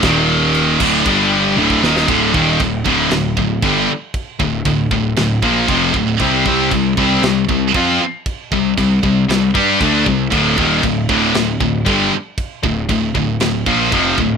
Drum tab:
CC |x---x-x-x-------|x---x---x---x---|x---x---x---x---|x---x---x---x---|
SD |o-------------oo|--------o-------|--------o-------|--------o-------|
T1 |------------o---|----------------|----------------|----------------|
BD |o-----o-o----o--|o-o-o-o---o-o---|o-o-o-o---o-o-o-|o-o-o-o---o-o---|

CC |x---x---x---x---|x---x---x---x---|x---x---x---x---|
SD |--------o-------|--------o-------|--------o-------|
T1 |----------------|----------------|----------------|
BD |o-o-o-o---o-o-o-|o-o-o-o---o-o---|o-o-o-o---o-o-o-|